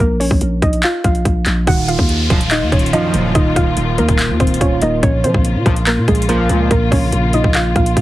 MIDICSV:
0, 0, Header, 1, 8, 480
1, 0, Start_track
1, 0, Tempo, 419580
1, 1914, Time_signature, 4, 2, 24, 8
1, 9169, End_track
2, 0, Start_track
2, 0, Title_t, "Synth pluck"
2, 0, Program_c, 0, 84
2, 0, Note_on_c, 0, 70, 85
2, 5, Note_on_c, 0, 58, 67
2, 194, Note_off_c, 0, 70, 0
2, 199, Note_off_c, 0, 58, 0
2, 228, Note_on_c, 0, 73, 83
2, 238, Note_on_c, 0, 61, 64
2, 682, Note_off_c, 0, 73, 0
2, 687, Note_off_c, 0, 61, 0
2, 715, Note_on_c, 0, 75, 80
2, 724, Note_on_c, 0, 63, 63
2, 913, Note_off_c, 0, 75, 0
2, 918, Note_off_c, 0, 63, 0
2, 958, Note_on_c, 0, 77, 86
2, 967, Note_on_c, 0, 65, 70
2, 1155, Note_off_c, 0, 77, 0
2, 1160, Note_off_c, 0, 65, 0
2, 1195, Note_on_c, 0, 77, 81
2, 1204, Note_on_c, 0, 65, 61
2, 1871, Note_off_c, 0, 77, 0
2, 1876, Note_off_c, 0, 65, 0
2, 1917, Note_on_c, 0, 78, 101
2, 1926, Note_on_c, 0, 66, 77
2, 2115, Note_off_c, 0, 78, 0
2, 2120, Note_off_c, 0, 66, 0
2, 2153, Note_on_c, 0, 77, 85
2, 2163, Note_on_c, 0, 65, 71
2, 2830, Note_off_c, 0, 77, 0
2, 2835, Note_off_c, 0, 65, 0
2, 2872, Note_on_c, 0, 75, 82
2, 2881, Note_on_c, 0, 63, 68
2, 3071, Note_off_c, 0, 75, 0
2, 3077, Note_off_c, 0, 63, 0
2, 3111, Note_on_c, 0, 73, 77
2, 3121, Note_on_c, 0, 61, 60
2, 3311, Note_off_c, 0, 73, 0
2, 3317, Note_off_c, 0, 61, 0
2, 3352, Note_on_c, 0, 75, 89
2, 3361, Note_on_c, 0, 63, 61
2, 3804, Note_off_c, 0, 75, 0
2, 3809, Note_off_c, 0, 63, 0
2, 3834, Note_on_c, 0, 75, 99
2, 3843, Note_on_c, 0, 63, 75
2, 4032, Note_off_c, 0, 75, 0
2, 4038, Note_off_c, 0, 63, 0
2, 4074, Note_on_c, 0, 77, 80
2, 4083, Note_on_c, 0, 65, 62
2, 4525, Note_off_c, 0, 77, 0
2, 4530, Note_off_c, 0, 65, 0
2, 4557, Note_on_c, 0, 70, 86
2, 4566, Note_on_c, 0, 58, 65
2, 5007, Note_off_c, 0, 70, 0
2, 5011, Note_off_c, 0, 58, 0
2, 5035, Note_on_c, 0, 72, 76
2, 5045, Note_on_c, 0, 60, 62
2, 5233, Note_off_c, 0, 72, 0
2, 5239, Note_off_c, 0, 60, 0
2, 5276, Note_on_c, 0, 73, 83
2, 5286, Note_on_c, 0, 61, 68
2, 5474, Note_off_c, 0, 73, 0
2, 5480, Note_off_c, 0, 61, 0
2, 5516, Note_on_c, 0, 75, 83
2, 5526, Note_on_c, 0, 63, 68
2, 5714, Note_off_c, 0, 75, 0
2, 5719, Note_off_c, 0, 63, 0
2, 5752, Note_on_c, 0, 73, 111
2, 5761, Note_on_c, 0, 61, 78
2, 5951, Note_off_c, 0, 73, 0
2, 5957, Note_off_c, 0, 61, 0
2, 5993, Note_on_c, 0, 72, 84
2, 6002, Note_on_c, 0, 60, 61
2, 6670, Note_off_c, 0, 72, 0
2, 6675, Note_off_c, 0, 60, 0
2, 6715, Note_on_c, 0, 70, 88
2, 6724, Note_on_c, 0, 58, 69
2, 6913, Note_off_c, 0, 70, 0
2, 6918, Note_off_c, 0, 58, 0
2, 6954, Note_on_c, 0, 68, 87
2, 6963, Note_on_c, 0, 56, 65
2, 7152, Note_off_c, 0, 68, 0
2, 7158, Note_off_c, 0, 56, 0
2, 7192, Note_on_c, 0, 70, 95
2, 7200, Note_on_c, 0, 58, 71
2, 7644, Note_off_c, 0, 70, 0
2, 7648, Note_off_c, 0, 58, 0
2, 7676, Note_on_c, 0, 70, 90
2, 7685, Note_on_c, 0, 58, 67
2, 7874, Note_off_c, 0, 70, 0
2, 7879, Note_off_c, 0, 58, 0
2, 7909, Note_on_c, 0, 73, 88
2, 7918, Note_on_c, 0, 61, 67
2, 8363, Note_off_c, 0, 73, 0
2, 8367, Note_off_c, 0, 61, 0
2, 8395, Note_on_c, 0, 75, 82
2, 8404, Note_on_c, 0, 63, 68
2, 8593, Note_off_c, 0, 75, 0
2, 8599, Note_off_c, 0, 63, 0
2, 8637, Note_on_c, 0, 77, 88
2, 8646, Note_on_c, 0, 65, 68
2, 8834, Note_off_c, 0, 77, 0
2, 8840, Note_off_c, 0, 65, 0
2, 8875, Note_on_c, 0, 77, 81
2, 8885, Note_on_c, 0, 65, 61
2, 9169, Note_off_c, 0, 65, 0
2, 9169, Note_off_c, 0, 77, 0
2, 9169, End_track
3, 0, Start_track
3, 0, Title_t, "String section"
3, 0, Program_c, 1, 48
3, 1913, Note_on_c, 1, 51, 81
3, 1913, Note_on_c, 1, 53, 74
3, 1913, Note_on_c, 1, 65, 92
3, 5715, Note_off_c, 1, 51, 0
3, 5715, Note_off_c, 1, 53, 0
3, 5715, Note_off_c, 1, 65, 0
3, 5754, Note_on_c, 1, 49, 84
3, 5754, Note_on_c, 1, 58, 78
3, 5754, Note_on_c, 1, 65, 94
3, 9169, Note_off_c, 1, 49, 0
3, 9169, Note_off_c, 1, 58, 0
3, 9169, Note_off_c, 1, 65, 0
3, 9169, End_track
4, 0, Start_track
4, 0, Title_t, "Synth keys"
4, 0, Program_c, 2, 88
4, 1910, Note_on_c, 2, 51, 97
4, 2091, Control_c, 2, 64, 127
4, 2139, Note_off_c, 2, 51, 0
4, 2153, Note_on_c, 2, 51, 85
4, 2622, Note_off_c, 2, 51, 0
4, 2636, Note_on_c, 2, 51, 75
4, 3097, Note_off_c, 2, 51, 0
4, 3110, Note_on_c, 2, 51, 84
4, 3355, Note_on_c, 2, 65, 99
4, 3602, Note_on_c, 2, 58, 92
4, 3821, Note_off_c, 2, 51, 0
4, 3835, Note_on_c, 2, 51, 92
4, 4067, Note_off_c, 2, 51, 0
4, 4081, Note_on_c, 2, 51, 84
4, 4539, Note_off_c, 2, 51, 0
4, 4553, Note_on_c, 2, 51, 82
4, 4555, Note_off_c, 2, 65, 0
4, 4798, Note_off_c, 2, 58, 0
4, 5027, Note_off_c, 2, 51, 0
4, 5041, Note_on_c, 2, 51, 79
4, 5273, Note_on_c, 2, 65, 90
4, 5517, Note_on_c, 2, 58, 92
4, 5747, Note_on_c, 2, 46, 99
4, 5753, Note_off_c, 2, 65, 0
4, 5755, Note_off_c, 2, 58, 0
4, 5758, Note_off_c, 2, 51, 0
4, 5771, Control_c, 2, 64, 0
4, 5971, Control_c, 2, 64, 127
4, 5985, Note_off_c, 2, 46, 0
4, 5999, Note_on_c, 2, 46, 73
4, 6464, Note_off_c, 2, 46, 0
4, 6478, Note_on_c, 2, 46, 84
4, 6938, Note_off_c, 2, 46, 0
4, 6952, Note_on_c, 2, 46, 85
4, 7201, Note_on_c, 2, 65, 91
4, 7433, Note_on_c, 2, 58, 85
4, 7664, Note_off_c, 2, 46, 0
4, 7678, Note_on_c, 2, 46, 97
4, 7903, Note_off_c, 2, 46, 0
4, 7916, Note_on_c, 2, 46, 82
4, 8385, Note_off_c, 2, 46, 0
4, 8397, Note_off_c, 2, 65, 0
4, 8399, Note_on_c, 2, 46, 79
4, 8634, Note_off_c, 2, 58, 0
4, 8862, Note_off_c, 2, 46, 0
4, 8876, Note_on_c, 2, 46, 79
4, 9120, Note_on_c, 2, 65, 90
4, 9169, Note_off_c, 2, 46, 0
4, 9169, Note_off_c, 2, 65, 0
4, 9169, End_track
5, 0, Start_track
5, 0, Title_t, "Analog polysynth"
5, 0, Program_c, 3, 90
5, 2634, Note_on_c, 3, 42, 79
5, 2635, Note_on_c, 3, 34, 91
5, 2635, Note_on_c, 3, 53, 101
5, 2736, Note_off_c, 3, 34, 0
5, 2736, Note_off_c, 3, 42, 0
5, 2736, Note_off_c, 3, 53, 0
5, 3354, Note_on_c, 3, 34, 104
5, 3354, Note_on_c, 3, 42, 101
5, 3354, Note_on_c, 3, 53, 112
5, 3810, Note_off_c, 3, 34, 0
5, 3810, Note_off_c, 3, 42, 0
5, 3810, Note_off_c, 3, 53, 0
5, 6474, Note_on_c, 3, 37, 86
5, 6474, Note_on_c, 3, 46, 88
5, 6474, Note_on_c, 3, 53, 101
5, 6576, Note_off_c, 3, 37, 0
5, 6576, Note_off_c, 3, 46, 0
5, 6576, Note_off_c, 3, 53, 0
5, 7194, Note_on_c, 3, 37, 94
5, 7194, Note_on_c, 3, 46, 102
5, 7194, Note_on_c, 3, 53, 115
5, 7650, Note_off_c, 3, 37, 0
5, 7650, Note_off_c, 3, 46, 0
5, 7650, Note_off_c, 3, 53, 0
5, 9169, End_track
6, 0, Start_track
6, 0, Title_t, "808-style bass"
6, 0, Program_c, 4, 38
6, 0, Note_on_c, 4, 34, 111
6, 339, Note_off_c, 4, 34, 0
6, 353, Note_on_c, 4, 34, 101
6, 469, Note_off_c, 4, 34, 0
6, 474, Note_on_c, 4, 34, 100
6, 704, Note_off_c, 4, 34, 0
6, 713, Note_on_c, 4, 34, 106
6, 944, Note_off_c, 4, 34, 0
6, 1194, Note_on_c, 4, 34, 104
6, 1424, Note_off_c, 4, 34, 0
6, 1434, Note_on_c, 4, 34, 107
6, 1664, Note_off_c, 4, 34, 0
6, 1674, Note_on_c, 4, 34, 110
6, 1905, Note_off_c, 4, 34, 0
6, 1914, Note_on_c, 4, 27, 108
6, 2260, Note_off_c, 4, 27, 0
6, 2274, Note_on_c, 4, 39, 107
6, 2620, Note_off_c, 4, 39, 0
6, 2633, Note_on_c, 4, 27, 115
6, 2994, Note_on_c, 4, 39, 99
6, 3012, Note_off_c, 4, 27, 0
6, 3108, Note_off_c, 4, 39, 0
6, 3114, Note_on_c, 4, 27, 106
6, 3345, Note_off_c, 4, 27, 0
6, 3595, Note_on_c, 4, 27, 112
6, 3825, Note_off_c, 4, 27, 0
6, 3834, Note_on_c, 4, 27, 116
6, 4064, Note_off_c, 4, 27, 0
6, 4075, Note_on_c, 4, 27, 101
6, 4305, Note_off_c, 4, 27, 0
6, 4314, Note_on_c, 4, 27, 102
6, 4554, Note_on_c, 4, 39, 101
6, 4571, Note_off_c, 4, 27, 0
6, 4668, Note_off_c, 4, 39, 0
6, 4674, Note_on_c, 4, 27, 110
6, 4914, Note_on_c, 4, 39, 100
6, 4931, Note_off_c, 4, 27, 0
6, 5028, Note_off_c, 4, 39, 0
6, 5034, Note_on_c, 4, 27, 101
6, 5265, Note_off_c, 4, 27, 0
6, 5274, Note_on_c, 4, 27, 108
6, 5504, Note_off_c, 4, 27, 0
6, 5514, Note_on_c, 4, 27, 109
6, 5744, Note_off_c, 4, 27, 0
6, 5754, Note_on_c, 4, 34, 107
6, 5994, Note_on_c, 4, 53, 97
6, 6011, Note_off_c, 4, 34, 0
6, 6108, Note_off_c, 4, 53, 0
6, 6114, Note_on_c, 4, 34, 103
6, 6354, Note_on_c, 4, 46, 94
6, 6371, Note_off_c, 4, 34, 0
6, 6468, Note_off_c, 4, 46, 0
6, 6473, Note_on_c, 4, 34, 114
6, 6834, Note_on_c, 4, 46, 98
6, 6851, Note_off_c, 4, 34, 0
6, 6948, Note_off_c, 4, 46, 0
6, 6954, Note_on_c, 4, 34, 106
6, 7415, Note_off_c, 4, 34, 0
6, 7434, Note_on_c, 4, 37, 111
6, 7664, Note_off_c, 4, 37, 0
6, 7674, Note_on_c, 4, 34, 113
6, 7904, Note_off_c, 4, 34, 0
6, 7915, Note_on_c, 4, 34, 103
6, 8145, Note_off_c, 4, 34, 0
6, 8154, Note_on_c, 4, 34, 102
6, 8499, Note_off_c, 4, 34, 0
6, 8514, Note_on_c, 4, 34, 104
6, 8860, Note_off_c, 4, 34, 0
6, 8874, Note_on_c, 4, 34, 107
6, 9104, Note_off_c, 4, 34, 0
6, 9114, Note_on_c, 4, 34, 107
6, 9169, Note_off_c, 4, 34, 0
6, 9169, End_track
7, 0, Start_track
7, 0, Title_t, "Downlifter"
7, 0, Program_c, 5, 103
7, 1914, Note_on_c, 5, 60, 89
7, 5754, Note_off_c, 5, 60, 0
7, 9169, End_track
8, 0, Start_track
8, 0, Title_t, "Drums"
8, 236, Note_on_c, 9, 46, 81
8, 350, Note_off_c, 9, 46, 0
8, 353, Note_on_c, 9, 36, 95
8, 468, Note_off_c, 9, 36, 0
8, 469, Note_on_c, 9, 42, 74
8, 584, Note_off_c, 9, 42, 0
8, 713, Note_on_c, 9, 36, 106
8, 714, Note_on_c, 9, 42, 59
8, 827, Note_off_c, 9, 36, 0
8, 828, Note_off_c, 9, 42, 0
8, 834, Note_on_c, 9, 42, 57
8, 948, Note_off_c, 9, 42, 0
8, 951, Note_on_c, 9, 42, 74
8, 955, Note_on_c, 9, 39, 116
8, 1066, Note_off_c, 9, 42, 0
8, 1069, Note_off_c, 9, 39, 0
8, 1194, Note_on_c, 9, 36, 106
8, 1194, Note_on_c, 9, 42, 80
8, 1308, Note_off_c, 9, 36, 0
8, 1308, Note_off_c, 9, 42, 0
8, 1314, Note_on_c, 9, 42, 44
8, 1428, Note_off_c, 9, 42, 0
8, 1434, Note_on_c, 9, 36, 94
8, 1435, Note_on_c, 9, 42, 79
8, 1548, Note_off_c, 9, 36, 0
8, 1550, Note_off_c, 9, 42, 0
8, 1669, Note_on_c, 9, 42, 78
8, 1673, Note_on_c, 9, 39, 66
8, 1784, Note_off_c, 9, 42, 0
8, 1788, Note_off_c, 9, 39, 0
8, 1914, Note_on_c, 9, 36, 119
8, 1914, Note_on_c, 9, 42, 71
8, 2028, Note_off_c, 9, 36, 0
8, 2028, Note_off_c, 9, 42, 0
8, 2157, Note_on_c, 9, 42, 82
8, 2271, Note_off_c, 9, 42, 0
8, 2274, Note_on_c, 9, 36, 101
8, 2388, Note_off_c, 9, 36, 0
8, 2390, Note_on_c, 9, 42, 79
8, 2504, Note_off_c, 9, 42, 0
8, 2633, Note_on_c, 9, 36, 113
8, 2635, Note_on_c, 9, 42, 43
8, 2748, Note_off_c, 9, 36, 0
8, 2749, Note_off_c, 9, 42, 0
8, 2754, Note_on_c, 9, 42, 74
8, 2869, Note_off_c, 9, 42, 0
8, 2872, Note_on_c, 9, 42, 81
8, 2875, Note_on_c, 9, 39, 122
8, 2986, Note_off_c, 9, 42, 0
8, 2990, Note_off_c, 9, 39, 0
8, 3114, Note_on_c, 9, 36, 106
8, 3114, Note_on_c, 9, 42, 49
8, 3194, Note_off_c, 9, 42, 0
8, 3194, Note_on_c, 9, 42, 65
8, 3229, Note_off_c, 9, 36, 0
8, 3275, Note_off_c, 9, 42, 0
8, 3275, Note_on_c, 9, 42, 78
8, 3355, Note_off_c, 9, 42, 0
8, 3355, Note_on_c, 9, 42, 85
8, 3470, Note_off_c, 9, 42, 0
8, 3589, Note_on_c, 9, 42, 82
8, 3704, Note_off_c, 9, 42, 0
8, 3833, Note_on_c, 9, 42, 75
8, 3834, Note_on_c, 9, 36, 122
8, 3948, Note_off_c, 9, 36, 0
8, 3948, Note_off_c, 9, 42, 0
8, 4075, Note_on_c, 9, 36, 98
8, 4076, Note_on_c, 9, 42, 81
8, 4189, Note_off_c, 9, 36, 0
8, 4191, Note_off_c, 9, 42, 0
8, 4309, Note_on_c, 9, 42, 82
8, 4424, Note_off_c, 9, 42, 0
8, 4554, Note_on_c, 9, 42, 44
8, 4669, Note_off_c, 9, 42, 0
8, 4674, Note_on_c, 9, 36, 96
8, 4674, Note_on_c, 9, 42, 71
8, 4788, Note_off_c, 9, 36, 0
8, 4788, Note_off_c, 9, 42, 0
8, 4791, Note_on_c, 9, 42, 81
8, 4795, Note_on_c, 9, 39, 125
8, 4906, Note_off_c, 9, 42, 0
8, 4909, Note_off_c, 9, 39, 0
8, 5034, Note_on_c, 9, 36, 110
8, 5034, Note_on_c, 9, 42, 52
8, 5114, Note_off_c, 9, 42, 0
8, 5114, Note_on_c, 9, 42, 65
8, 5149, Note_off_c, 9, 36, 0
8, 5194, Note_off_c, 9, 42, 0
8, 5194, Note_on_c, 9, 42, 78
8, 5274, Note_on_c, 9, 36, 97
8, 5275, Note_off_c, 9, 42, 0
8, 5275, Note_on_c, 9, 42, 84
8, 5388, Note_off_c, 9, 36, 0
8, 5389, Note_off_c, 9, 42, 0
8, 5509, Note_on_c, 9, 42, 84
8, 5623, Note_off_c, 9, 42, 0
8, 5753, Note_on_c, 9, 42, 73
8, 5754, Note_on_c, 9, 36, 124
8, 5868, Note_off_c, 9, 36, 0
8, 5868, Note_off_c, 9, 42, 0
8, 5996, Note_on_c, 9, 42, 81
8, 6111, Note_off_c, 9, 42, 0
8, 6114, Note_on_c, 9, 36, 100
8, 6228, Note_off_c, 9, 36, 0
8, 6230, Note_on_c, 9, 42, 79
8, 6344, Note_off_c, 9, 42, 0
8, 6473, Note_on_c, 9, 36, 113
8, 6474, Note_on_c, 9, 42, 44
8, 6587, Note_off_c, 9, 36, 0
8, 6589, Note_off_c, 9, 42, 0
8, 6594, Note_on_c, 9, 42, 73
8, 6709, Note_off_c, 9, 42, 0
8, 6712, Note_on_c, 9, 42, 81
8, 6715, Note_on_c, 9, 39, 126
8, 6826, Note_off_c, 9, 42, 0
8, 6830, Note_off_c, 9, 39, 0
8, 6954, Note_on_c, 9, 36, 108
8, 6954, Note_on_c, 9, 42, 50
8, 7034, Note_off_c, 9, 42, 0
8, 7034, Note_on_c, 9, 42, 65
8, 7069, Note_off_c, 9, 36, 0
8, 7114, Note_off_c, 9, 42, 0
8, 7114, Note_on_c, 9, 42, 81
8, 7195, Note_off_c, 9, 42, 0
8, 7195, Note_on_c, 9, 42, 84
8, 7310, Note_off_c, 9, 42, 0
8, 7429, Note_on_c, 9, 42, 82
8, 7544, Note_off_c, 9, 42, 0
8, 7674, Note_on_c, 9, 36, 119
8, 7674, Note_on_c, 9, 42, 71
8, 7788, Note_off_c, 9, 36, 0
8, 7788, Note_off_c, 9, 42, 0
8, 7915, Note_on_c, 9, 36, 99
8, 7916, Note_on_c, 9, 46, 78
8, 8029, Note_off_c, 9, 36, 0
8, 8031, Note_off_c, 9, 46, 0
8, 8150, Note_on_c, 9, 42, 80
8, 8264, Note_off_c, 9, 42, 0
8, 8388, Note_on_c, 9, 42, 69
8, 8502, Note_off_c, 9, 42, 0
8, 8514, Note_on_c, 9, 36, 98
8, 8628, Note_off_c, 9, 36, 0
8, 8631, Note_on_c, 9, 42, 80
8, 8635, Note_on_c, 9, 39, 127
8, 8746, Note_off_c, 9, 42, 0
8, 8749, Note_off_c, 9, 39, 0
8, 8874, Note_on_c, 9, 36, 108
8, 8874, Note_on_c, 9, 42, 49
8, 8988, Note_off_c, 9, 42, 0
8, 8989, Note_off_c, 9, 36, 0
8, 8994, Note_on_c, 9, 42, 80
8, 9108, Note_off_c, 9, 42, 0
8, 9113, Note_on_c, 9, 36, 97
8, 9115, Note_on_c, 9, 42, 84
8, 9169, Note_off_c, 9, 36, 0
8, 9169, Note_off_c, 9, 42, 0
8, 9169, End_track
0, 0, End_of_file